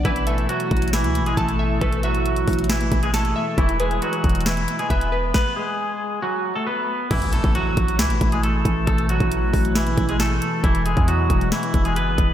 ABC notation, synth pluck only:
X:1
M:4/4
L:1/8
Q:1/4=136
K:Emix
V:1 name="Synth pluck"
B e4- e a e | B e4- e a e | E B4- B e B | z8 |
z8 | z8 | z8 |]